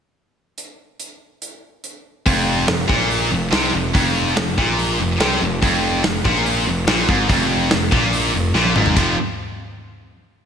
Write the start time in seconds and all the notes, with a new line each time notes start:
0.58 closed hi-hat
1.00 closed hi-hat
1.42 closed hi-hat
1.84 closed hi-hat
2.26 F1 F2, kick, open hi-hat
2.67 F1 F2, snare, open hi-hat
2.88 A#1 A#2, kick
3.00 snare
3.10 open hi-hat
3.31 F1 F2
3.52 C2 C3, snare, open hi-hat
3.73 F1 F2
3.94 F1 F2, kick, open hi-hat
4.36 F1 F2, snare, open hi-hat
4.58 A#1 A#2, kick
4.79 open hi-hat
5.00 F1 F2
5.20 C2 C3, snare, open hi-hat
5.41 F1 F2
5.62 F1 F2, kick, open hi-hat
6.04 F1 F2, snare, open hi-hat
6.25 A#1 A#2, kick
6.35 snare
6.46 open hi-hat
6.66 F1 F2
6.88 A#1 A#2, snare, open hi-hat
7.08 G#1 G#2, kick
7.29 F1 F2, kick, open hi-hat
7.71 F1 F2, snare, open hi-hat
7.92 A#1 A#2, kick
8.13 open hi-hat
8.33 F1 F2
8.55 A#1 A#2, snare
8.65 high tom
8.76 G#1 G#2, mid tom
8.86 floor tom
8.96 F1 F2 C3 F3, kick, crash